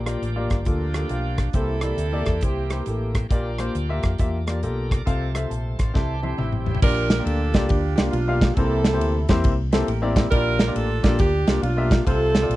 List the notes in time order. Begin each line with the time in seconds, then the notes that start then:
Already playing: A#1 A#2 F3 A#3 D4 G4
0.06 A#3 F4 G4 D5, cross-stick, closed hi-hat
0.22 A1, closed hi-hat
0.36 A#3 F4 G4 D5
0.50 G1, kick, cross-stick, closed hi-hat
0.65 D2 A#3 D4 F4 G4 A4, kick, closed hi-hat
0.94 A#3 F4 G4 A4, cross-stick, closed hi-hat
1.09 B1 A#3 F4 G4 F5, closed hi-hat
1.38 kick, cross-stick, closed hi-hat
1.53 C2 C3 E3 A#3 C4 E4 G4 A4 C5, kick, closed hi-hat
1.81 A#3 E4 G4 D5, cross-stick, closed hi-hat
1.97 D2, closed hi-hat
2.12 A#3 E4 G4 D5
2.26 E2, kick, cross-stick, closed hi-hat
2.41 C2 A#3 E4 G4 C5, kick, closed hi-hat
2.70 A#3 E4 G4 C5, cross-stick, closed hi-hat
2.86 A1 A#3 E4 G4 A4, closed hi-hat
3.15 kick, cross-stick, closed hi-hat
3.29 A#1 A#2 A#3 D4 F4 G4 D5, kick, closed hi-hat
3.58 A#3 F4 G4 C5, cross-stick, closed hi-hat
3.75 D2, closed hi-hat
3.89 A#3 F4 G4 E5
4.03 F2, kick, cross-stick, closed hi-hat
4.18 E2 A#3 F4 G4 E5, kick, closed hi-hat
4.46 A#3 F4 G4 A4 D5, cross-stick, closed hi-hat
4.63 B1 A#3 F4 G4 A4 A#4, closed hi-hat
4.90 A#4 D5, kick, cross-stick, closed hi-hat
5.05 C2 C3 F3 A3 C4 F4 A4 F5, kick, closed hi-hat
5.34 C4 F4 A4 E5, cross-stick, closed hi-hat
5.50 A#1 A4 C5 A5, closed hi-hat
5.78 A1 D5 F5 C6, kick, cross-stick, closed hi-hat
5.94 C2 C3 D3 G3 C4 E4 G4 A4 E5, kick, snare
5.99 E3
6.23 C4 E4 G4 A4 C5 E5, high tom
6.38 A1 C4 E4 G4 E5, mid tom
6.52 mid tom
6.66 floor tom
6.75 floor tom
6.82 A#1 A#2 A#3 D4 F4 G4 A#4 D5, kick, crash
7.10 snare, ride
7.19 A#3 D4 F4 G4 D5
7.24 D2 D4 F4 A4, ride
7.54 C2 A#3 D4 F4 G4 D5, kick, snare, ride
7.68 D2 D4 G4, kick, ride
7.95 C2 A#3 D4 F4 G4 D5, snare, ride
8.11 B1 D4 F4, ride
8.27 A#3 D4 F4 G4 F5
8.41 kick, snare, ride
8.55 C2 C3 A#3 C4 E4 G4 A4 C5, kick, ride
8.85 snare, ride
8.93 A#3 C4 E4 G4 C5
9.00 D2, ride
9.28 E2 A#3 C4 E4 G4 C5, kick, snare, ride
9.44 C2, kick, ride
9.72 A#3 C4 E4 G4 A4 C5, snare, ride
9.88 A1 G4 A#4, ride
10.02 A#3 C4 E4 G4 D5
10.16 E4 G4, kick, snare, ride
10.31 A#1 A#2 A#3 D4 F4 G4 A#4 D5, kick, ride
10.59 snare, ride
10.67 A#3 D4 F4 G4 D5
10.75 A1 A4, ride
11.03 A#1 A#3 D4 F4 G4 A4 D5, kick, snare, ride
11.19 D2 D4 G4, kick, ride
11.47 C2 A#3 D4 F4 G4 D5, snare, ride
11.62 B1 D4 F4, ride
11.77 A#3 D4 F4 G4 E5
11.91 kick, snare, ride
12.05 C2 C3 C4 F4 A4 C5, kick, ride
12.35 snare, ride
12.42 F4 A4 D5
12.49 A#1, ride